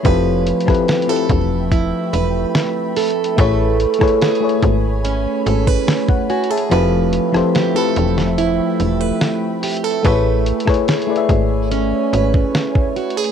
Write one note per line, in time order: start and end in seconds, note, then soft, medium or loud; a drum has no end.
0.00 0.45 F3 medium
0.00 13.32 A3 medium
0.00 0.45 C4 medium
0.00 0.13 C#4 medium
0.00 0.13 G#4 medium
0.00 13.32 B5 medium
0.05 0.53 F1 loud
0.05 3.38 F3 medium
0.05 0.45 E4 medium
0.05 0.46 G4 medium
0.05 0.46 A4 medium
0.05 2.13 B4 medium
0.05 0.47 B4 loud
0.05 3.35 E5 medium
0.05 3.35 G5 medium
0.05 kick loud
0.05 closed hi-hat medium
0.46 closed hi-hat medium
0.60 closed hi-hat medium
0.65 0.76 E1 soft
0.65 0.93 F3 medium
0.65 0.94 C4 medium
0.65 0.94 E4 medium
0.65 0.95 G4 medium
0.65 0.95 A4 medium
0.65 kick medium
0.65 cross-stick medium
0.70 0.96 B4 loud
0.74 closed hi-hat medium
0.88 1.09 G4 medium
0.88 snare loud
0.88 closed hi-hat medium
1.02 closed hi-hat soft
1.07 2.16 F3 medium
1.07 2.17 C4 medium
1.07 2.17 E4 medium
1.07 2.18 G4 medium
1.07 2.95 A4 medium
1.07 2.18 A4 medium
1.11 2.18 B4 loud
1.16 closed hi-hat soft
1.29 1.93 E1 loud
1.29 kick loud
1.29 closed hi-hat medium
1.71 5.04 E4 medium
1.71 kick medium
1.71 closed hi-hat medium
2.13 2.45 E1 medium
2.13 3.38 B4 medium
2.13 closed hi-hat medium
2.55 snare loud
2.55 closed hi-hat medium
2.96 4.21 A4 medium
2.96 closed hi-hat soft
2.96 open hi-hat medium
3.10 closed hi-hat medium
3.24 closed hi-hat medium
3.36 3.86 A1 loud
3.36 3.78 A3 medium
3.36 6.75 A3 medium
3.36 3.78 E4 medium
3.36 3.79 G#4 medium
3.36 5.46 B4 medium
3.36 3.79 B4 medium
3.36 6.68 C#5 medium
3.36 6.68 G#5 medium
3.36 kick loud
3.36 closed hi-hat medium
3.40 3.80 C#5 loud
3.80 closed hi-hat medium
3.94 closed hi-hat medium
3.99 4.09 G#1 soft
3.99 4.27 A3 medium
3.99 4.27 E4 medium
3.99 4.28 G#4 medium
3.99 4.28 B4 medium
3.99 kick medium
3.99 cross-stick medium
4.03 4.29 C#5 loud
4.08 closed hi-hat medium
4.21 6.29 G#4 medium
4.21 snare loud
4.21 closed hi-hat medium
4.35 closed hi-hat soft
4.40 5.50 A3 medium
4.40 5.50 E4 medium
4.40 5.51 G#4 medium
4.40 5.51 B4 medium
4.45 5.52 C#5 loud
4.49 closed hi-hat soft
4.63 5.27 G#1 loud
4.63 kick loud
4.63 closed hi-hat medium
5.05 6.80 C#4 medium
5.05 closed hi-hat medium
5.46 5.78 G#1 medium
5.46 5.67 A4 medium
5.46 closed hi-hat medium
5.67 6.71 B4 medium
5.67 kick medium
5.88 snare loud
5.88 closed hi-hat medium
6.09 6.29 C#5 medium
6.09 6.29 F#5 medium
6.09 kick loud
6.30 6.51 F#4 medium
6.30 6.50 C#5 medium
6.30 6.50 G#5 medium
6.30 closed hi-hat soft
6.44 closed hi-hat medium
6.51 6.80 G#4 medium
6.51 6.91 E5 medium
6.51 6.90 A5 medium
6.58 closed hi-hat medium
6.70 7.19 F1 loud
6.70 7.11 F3 medium
6.70 10.05 F3 medium
6.70 7.12 C4 medium
6.70 7.12 E4 medium
6.70 7.12 G4 medium
6.70 7.13 A4 medium
6.70 8.79 B4 medium
6.70 10.01 E5 medium
6.70 10.01 G5 medium
6.70 closed hi-hat medium
6.74 7.13 B4 medium
7.13 closed hi-hat medium
7.32 7.43 E1 medium
7.32 7.60 F3 medium
7.32 7.61 C4 medium
7.32 7.61 E4 medium
7.32 7.61 G4 medium
7.32 7.62 A4 medium
7.32 cross-stick medium
7.36 7.62 C5 loud
7.55 7.76 G4 medium
7.55 snare loud
7.55 closed hi-hat medium
7.74 8.83 F3 medium
7.74 8.84 C4 medium
7.74 8.84 E4 medium
7.74 8.84 G4 medium
7.74 8.78 A4 medium
7.74 8.85 A4 medium
7.78 8.85 B4 loud
7.96 8.60 E1 loud
7.96 closed hi-hat medium
8.18 snare medium
8.38 11.71 E4 medium
8.38 closed hi-hat medium
8.80 9.12 E1 medium
8.80 9.01 A4 medium
8.80 closed hi-hat medium
9.01 10.04 B4 medium
9.21 snare loud
9.21 closed hi-hat medium
9.63 9.84 G4 medium
9.63 closed hi-hat medium
9.63 open hi-hat medium
9.77 closed hi-hat soft
9.84 10.13 A4 medium
9.91 closed hi-hat soft
10.03 10.53 A1 loud
10.03 10.44 A3 medium
10.03 13.32 A3 medium
10.03 10.45 E4 medium
10.03 10.46 G#4 medium
10.03 12.13 B4 medium
10.03 10.46 B4 medium
10.03 13.32 C#5 medium
10.03 13.32 G#5 medium
10.03 kick loud
10.03 closed hi-hat medium
10.07 10.47 C#5 medium
10.46 closed hi-hat medium
10.60 closed hi-hat medium
10.65 10.76 G#1 soft
10.65 10.93 A3 medium
10.65 10.94 E4 medium
10.65 10.94 G#4 medium
10.65 10.95 B4 medium
10.65 10.95 C#5 loud
10.65 kick medium
10.65 cross-stick loud
10.74 closed hi-hat medium
10.88 12.96 G#4 medium
10.88 snare loud
10.88 closed hi-hat medium
11.02 closed hi-hat soft
11.07 12.16 A3 medium
11.07 12.17 E4 medium
11.07 12.17 G#4 medium
11.07 12.18 B4 medium
11.11 11.16 D5 medium
11.16 12.22 E5 medium
11.16 closed hi-hat soft
11.29 11.93 G#1 medium
11.29 kick loud
11.29 closed hi-hat medium
11.71 13.32 C#4 medium
11.71 closed hi-hat medium
12.13 12.45 G#1 medium
12.13 13.32 B4 medium
12.13 closed hi-hat medium
12.34 kick medium
12.55 snare loud
12.55 closed hi-hat medium
12.75 kick loud
12.96 13.17 F#4 medium
12.96 closed hi-hat soft
13.10 closed hi-hat medium
13.17 13.32 G#4 medium
13.24 closed hi-hat medium